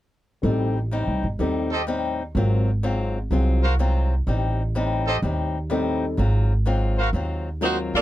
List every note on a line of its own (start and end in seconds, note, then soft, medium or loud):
0.42 1.03 A1 medium
0.42 0.78 A2 soft
0.42 0.72 G3 soft
0.42 0.78 G3 soft
0.42 0.72 C4 soft
0.42 0.78 C4 soft
0.42 0.73 D#4 soft
0.42 0.79 D#4 soft
0.42 0.73 A4 medium
0.91 1.25 A2 medium
0.91 1.26 G3 medium
0.91 1.26 C4 medium
0.91 1.26 D#4 medium
1.07 1.22 C2 medium
1.23 1.38 G1 medium
1.39 2.31 D#2 medium
1.39 1.73 A2 soft
1.39 1.68 G3 soft
1.39 1.74 G3 soft
1.39 1.69 C4 soft
1.39 1.74 C4 soft
1.39 1.69 D#4 soft
1.39 1.74 D#4 soft
1.39 1.69 A4 soft
1.71 1.82 G4 medium
1.71 1.82 A4 medium
1.71 1.82 C5 medium
1.71 1.82 D#5 medium
1.87 2.21 A2 medium
1.87 2.22 G3 medium
1.87 2.22 C4 medium
1.87 2.22 D#4 medium
2.35 3.27 G#1 medium
2.35 2.69 G#2 soft
2.35 2.64 F#3 soft
2.35 2.70 F#3 soft
2.35 2.64 C4 soft
2.35 2.70 C4 medium
2.35 2.65 F4 soft
2.35 2.70 F4 medium
2.35 2.65 A#4 medium
2.83 3.17 G#2 medium
2.83 3.17 F#3 medium
2.83 3.18 C4 medium
2.83 3.17 F4 medium
3.30 4.22 C2 medium
3.30 3.65 G#2 soft
3.30 3.60 F#3 soft
3.30 3.65 F#3 soft
3.30 3.60 C4 soft
3.30 3.65 C4 soft
3.30 3.60 F4 soft
3.30 3.66 F4 medium
3.30 3.61 G#4 soft
3.63 3.74 F#4 medium
3.63 3.74 A#4 medium
3.63 3.74 C5 medium
3.63 3.74 F5 medium
3.79 4.13 G#2 medium
3.79 4.13 F#3 medium
3.79 4.13 C4 medium
3.79 4.13 F4 medium
4.27 5.18 A1 medium
4.27 4.61 A2 soft
4.27 4.61 G3 soft
4.27 4.61 C4 medium
4.27 4.62 D#4 soft
4.75 5.09 A2 medium
4.75 5.09 G3 medium
4.75 5.09 C4 medium
4.75 5.10 D#4 medium
5.07 5.18 G4 medium
5.07 5.18 A4 medium
5.07 5.17 C5 medium
5.07 5.17 D#5 medium
5.22 6.14 D#2 medium
5.22 5.56 A2 medium
5.22 5.57 G3 soft
5.22 5.57 C4 soft
5.22 5.57 D#4 medium
5.70 6.04 A2 medium
5.70 6.18 G3 soft
5.70 6.04 G3 medium
5.70 6.18 C4 soft
5.70 6.04 C4 medium
5.70 6.04 D#4 medium
5.70 6.19 D#4 medium
5.70 6.19 A4 medium
6.17 7.10 G#1 medium
6.17 6.52 G#2 medium
6.17 6.52 F#3 soft
6.17 6.52 C4 medium
6.17 6.53 F4 medium
6.66 7.00 G#2 medium
6.66 7.00 F#3 medium
6.66 7.00 C4 medium
6.66 7.00 F4 medium
6.98 7.09 F#4 medium
6.98 7.09 A#4 medium
6.98 7.09 C5 medium
6.98 7.09 F5 medium
7.13 7.89 D#2 medium
7.13 7.47 G#2 soft
7.13 7.48 F#3 soft
7.13 7.48 C4 soft
7.13 7.48 F4 medium
7.61 7.95 G#2 medium
7.61 8.02 F#3 soft
7.61 7.95 F#3 medium
7.61 7.77 A#3 medium
7.61 8.02 C4 soft
7.61 7.96 C4 medium
7.61 7.77 D#4 medium
7.61 8.02 F4 soft
7.61 7.96 F4 medium
7.61 7.77 F#4 medium
7.61 8.02 A#4 soft
7.61 7.77 C5 medium
7.94 8.02 D2 medium
7.94 8.02 A#3 medium
7.94 8.02 F4 medium
7.94 8.02 A4 medium
7.94 8.02 D5 medium